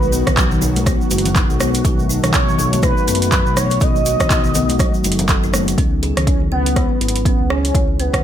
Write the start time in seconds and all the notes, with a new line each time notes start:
Already playing: B1 D#3 B3 F#4 B4
0.03 high conga, shaker
0.12 B3, shaker
0.27 B1, kick, cross-stick, closed hi-hat, mid tom, low conga, shaker
0.37 F#3, kick, clap, closed hi-hat, shaker
0.51 mid tom, shaker
0.62 B1 D#4, low conga, shaker
0.76 closed hi-hat, high conga, shaker
0.86 B3, kick, cross-stick, closed hi-hat, low conga, shaker
1.01 shaker
1.11 F#1 F#4, closed hi-hat, high conga, shaker
1.18 closed hi-hat
1.25 closed hi-hat, low conga, shaker
1.35 D#4, kick, clap, closed hi-hat, shaker
1.50 B1, shaker
1.60 B3, cross-stick, closed hi-hat, high conga, shaker
1.74 closed hi-hat, shaker
1.84 B1 F#3 A3, kick, closed hi-hat, shaker
1.99 high conga, shaker
2.09 D#4, shaker
2.23 B1, cross-stick, closed hi-hat, mid tom, low conga, shaker
2.33 B3 C#5, kick, clap, closed hi-hat, shaker
2.48 mid tom, shaker
2.59 B1 F#4, low conga, shaker
2.73 closed hi-hat, high conga, shaker
2.82 D#4 B4, kick, cross-stick, closed hi-hat, high conga, shaker
2.97 shaker
3.07 F#1 B3, closed hi-hat, high conga, shaker
3.15 closed hi-hat
3.22 B4, closed hi-hat, shaker
3.32 F#3, kick, clap, closed hi-hat, shaker
3.46 B1, shaker
3.56 D#4 C#5, cross-stick, closed hi-hat, low conga, shaker
3.71 closed hi-hat, shaker
3.80 B1 B3 D#5, kick, closed hi-hat, shaker
3.96 high conga, shaker
4.06 F#4, closed hi-hat, shaker
4.20 B1, kick, cross-stick, closed hi-hat, mid tom, low conga, shaker
4.30 D#4, kick, clap, closed hi-hat, shaker
4.44 mid tom, shaker
4.55 B1 B3, closed hi-hat, low conga, shaker
4.69 closed hi-hat, high conga, shaker
4.79 F#3, kick, cross-stick, closed hi-hat, low conga, shaker
4.94 shaker
5.04 F#1 D#4, closed hi-hat, high conga, shaker
5.12 closed hi-hat
5.19 closed hi-hat, low conga, shaker
5.28 A4, kick, clap, closed hi-hat, shaker
5.43 F#1 D#4, shaker
5.53 B3, cross-stick, closed hi-hat, high conga, shaker
5.68 closed hi-hat, shaker
5.78 C#2 C#4, kick, closed hi-hat
6.03 G#4, closed hi-hat
6.17 C#2, cross-stick, closed hi-hat, mid tom
6.27 C#4 E4, kick, closed hi-hat
6.42 mid tom
6.52 C#2 B3 C#4
6.66 closed hi-hat
6.76 G#3, kick, cross-stick, closed hi-hat
7.01 G#1 B3 E4, closed hi-hat
7.08 closed hi-hat
7.16 closed hi-hat
7.25 B3 C#4, kick, closed hi-hat
7.40 C#2
7.50 C#4 G#4, cross-stick
7.65 closed hi-hat
7.75 C#2 E4, kick, closed hi-hat
7.99 B3 C#4, closed hi-hat
8.13 C#2, kick, cross-stick, closed hi-hat, mid tom